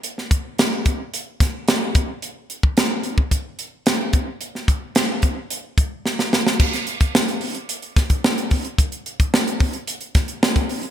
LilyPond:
\new DrumStaff \with { instrumentName = "Drums" } \drummode { \time 4/4 \tempo 4 = 110 hh16 sn16 <hh bd>8 <hh sn>8 <hh bd>8 hh8 <hh bd sn>8 <hh sn>8 <hh bd>8 | hh8 hh16 bd16 <hh sn>8 hh16 bd16 <hh bd>8 hh8 <hh sn>8 <hh bd>8 | hh16 sn16 <hh bd>8 <hh sn>8 <hh bd>8 hh8 <hh bd>8 sn16 sn16 sn16 sn16 | <cymc bd>16 <hh sn>16 hh16 <hh bd>16 sn16 hh16 hho16 hh16 hh16 hh16 <hh bd sn>16 <hh bd>16 sn16 hh16 <hho bd>16 hh16 |
<hh bd>16 hh16 hh16 <hh bd>16 sn16 hh16 <hho bd>16 hh16 hh16 hh16 <hh bd sn>16 hh16 sn16 <hh bd>16 hho16 hh16 | }